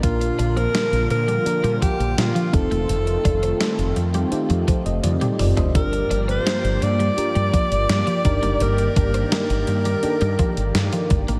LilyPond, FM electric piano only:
<<
  \new Staff \with { instrumentName = "FM electric piano" } { \time 4/4 \key bes \major \tempo 4 = 84 << { <ees' g'>16 r2. r8. | r2 r8 <a' c''>16 <c'' ees''>16 d''8 d''16 <c'' ees''>16~ | <c'' ees''>16 r2. r8. | r1 | } \\ { <bes d' f' bes'>2 <bes d' f' bes'>4. <c' ees' f' a'>8~ | <c' ees' f' a'>4. r8 <c' ees' f' g'>2 | <d' f' g' bes'>2 <d' f' g' bes'>4. <d' ees' g' bes'>8~ | <d' ees' g' bes'>4. r8 <d' ees' g' a' bes'>2 | } >> }
  \new Staff \with { instrumentName = "FM electric piano" } { \clef bass \time 4/4 \key bes \major bes,4. r2 r8 | r1 | g,4. r2 g,8~ | g,4 r2. | }
>>